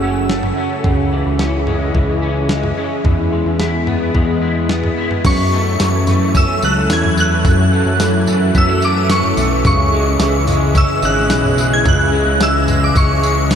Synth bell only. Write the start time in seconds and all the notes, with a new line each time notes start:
Already playing: E6
5.26 C#6
6.37 E6
6.65 F#6
6.93 G#6
7.20 F#6
8.58 E6
8.85 D6
9.11 C#6
9.67 C#6
10.78 E6
11.05 F#6
11.74 G#6
11.88 F#6
12.43 E6
12.84 D6
12.97 C#6